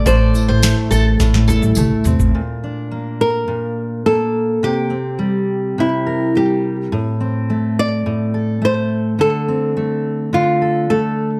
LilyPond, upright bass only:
\new Staff \with { instrumentName = "Upright bass" } { \clef bass \time 4/4 \key a \phrygian \tempo 4 = 105 a,,8 r16 a,,8 r16 a,,8 r16 a,16 e,16 a,,16 c,16 r16 c,16 a,,16 | r1 | r1 | r1 |
r1 | }